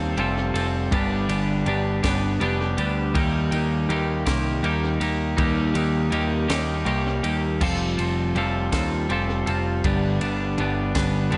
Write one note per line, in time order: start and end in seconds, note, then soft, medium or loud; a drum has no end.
0.00 0.14 D#2 medium
0.00 0.17 G3 medium
0.00 0.18 C4 medium
0.00 0.18 F4 medium
0.00 0.19 A4 medium
0.17 0.51 F1 medium
0.17 0.92 G3 medium
0.17 0.56 C4 medium
0.17 0.55 F4 medium
0.17 0.53 A4 medium
0.17 ride medium
0.54 0.88 F1 medium
0.54 0.91 C4 medium
0.54 0.90 F4 medium
0.54 0.89 A4 medium
0.54 ride medium
0.91 1.26 G1 medium
0.91 1.66 G2 loud
0.91 1.66 D3 medium
0.91 1.31 G3 medium
0.91 1.29 B3 loud
0.91 1.28 D4 loud
0.91 1.28 G4 loud
0.91 kick loud
0.91 ride loud
1.29 1.63 G1 medium
1.29 1.66 G3 medium
1.29 1.66 B3 medium
1.29 1.67 D4 medium
1.29 1.69 G4 medium
1.29 ride medium
1.66 2.00 G1 medium
1.66 2.06 G3 medium
1.66 2.04 B3 medium
1.66 2.03 D4 medium
1.66 2.02 G4 medium
1.66 ride medium
2.03 2.37 G1 loud
2.03 2.40 G3 medium
2.03 2.40 B3 medium
2.03 2.41 D4 medium
2.03 2.43 G4 medium
2.03 kick medium
2.03 snare loud
2.03 ride loud
2.40 2.75 F1 loud
2.40 2.80 G3 medium
2.40 2.78 B3 medium
2.40 2.77 D4 medium
2.40 2.77 G4 medium
2.40 ride medium
2.77 3.12 D2 medium
2.77 3.14 G3 medium
2.77 3.14 B3 medium
2.77 3.13 D4 medium
2.77 3.16 G4 medium
2.77 ride medium
3.14 3.49 D#2 medium
3.14 5.36 D#3 medium
3.14 3.89 G3 medium
3.14 3.54 A#3 medium
3.14 3.52 D#4 loud
3.14 3.51 G4 loud
3.14 kick loud
3.14 ride loud
3.51 3.86 D#2 medium
3.51 3.90 A#3 medium
3.51 3.91 D#4 medium
3.51 3.92 G4 medium
3.51 ride medium
3.89 4.23 D#2 medium
3.89 4.63 G3 medium
3.89 4.27 A#3 medium
3.89 4.26 D#4 medium
3.89 4.25 G4 medium
3.89 ride medium
4.26 4.61 C2 loud
4.26 4.63 A#3 medium
4.26 4.64 D#4 medium
4.26 4.65 G4 medium
4.26 kick medium
4.26 snare loud
4.26 ride loud
4.63 4.97 D#2 medium
4.63 5.37 G3 medium
4.63 5.02 A#3 medium
4.63 5.01 D#4 medium
4.63 5.00 G4 medium
4.63 ride medium
5.00 5.35 D#2 medium
5.00 5.37 A#3 medium
5.00 5.38 D#4 medium
5.00 5.39 G4 medium
5.00 ride medium
5.37 5.72 D#2 loud
5.37 6.12 D#3 loud
5.37 6.10 G3 loud
5.37 5.76 A#3 loud
5.37 5.74 D#4 loud
5.37 5.74 G4 loud
5.37 kick loud
5.37 ride loud
5.74 6.09 D#2 medium
5.74 6.11 A#3 medium
5.74 6.12 D#4 medium
5.74 6.13 G4 medium
5.74 ride medium
6.10 6.46 D#2 medium
6.10 6.85 G3 medium
6.10 6.50 A#3 medium
6.10 6.49 D#4 medium
6.10 6.48 G4 medium
6.10 ride medium
6.48 6.83 D#2 loud
6.48 6.85 A#3 medium
6.48 6.86 D#4 medium
6.48 6.88 G4 medium
6.48 snare loud
6.48 ride loud
6.85 7.20 C2 medium
6.85 7.61 G3 medium
6.85 7.25 A#3 medium
6.85 7.23 D#4 medium
6.85 7.23 G4 medium
6.85 ride medium
7.23 7.57 D#2 medium
7.23 7.60 A#3 medium
7.23 7.59 D#4 medium
7.23 7.63 G4 medium
7.23 ride medium
7.61 7.95 F1 loud
7.61 8.35 F3 medium
7.61 8.35 G3 medium
7.61 8.00 C4 medium
7.61 7.98 F4 loud
7.61 7.97 A4 loud
7.61 kick loud
7.61 crash loud
7.98 8.32 F1 medium
7.98 8.35 C4 medium
7.98 8.36 F4 medium
7.98 8.37 A4 medium
7.98 ride medium
8.35 8.69 F1 medium
8.35 9.09 G3 medium
8.35 8.74 C4 medium
8.35 8.73 F4 medium
8.35 8.71 A4 loud
8.35 ride medium
8.72 9.06 D#2 loud
8.72 9.10 C4 medium
8.72 9.11 F4 medium
8.72 9.12 A4 medium
8.72 kick medium
8.72 snare loud
8.72 ride loud
9.09 9.43 F1 medium
9.09 9.85 G3 medium
9.09 9.48 C4 medium
9.09 9.47 F4 medium
9.09 9.45 A4 medium
9.09 ride medium
9.46 9.81 F1 medium
9.46 9.83 C4 medium
9.46 9.82 F4 medium
9.46 9.81 A4 medium
9.46 ride medium
9.84 10.18 G1 loud
9.84 10.58 G2 loud
9.84 10.57 D3 loud
9.84 10.24 G3 loud
9.84 10.22 B3 loud
9.84 10.20 D4 loud
9.84 kick loud
9.84 ride loud
10.21 10.55 G1 medium
10.21 10.59 G3 medium
10.21 10.59 B3 medium
10.21 10.60 D4 medium
10.21 ride medium
10.58 10.92 G1 medium
10.58 11.30 D3 medium
10.58 10.97 G3 medium
10.58 10.95 B3 medium
10.58 10.93 D4 medium
10.58 ride medium
10.95 11.29 G1 medium
10.95 11.32 G3 medium
10.95 11.32 B3 medium
10.95 11.33 D4 medium
10.95 kick medium
10.95 snare loud
10.95 ride medium
11.31 11.38 F1 medium
11.31 11.38 D3 medium
11.31 11.38 G3 medium
11.31 11.38 B3 medium
11.31 11.38 D4 medium
11.31 ride medium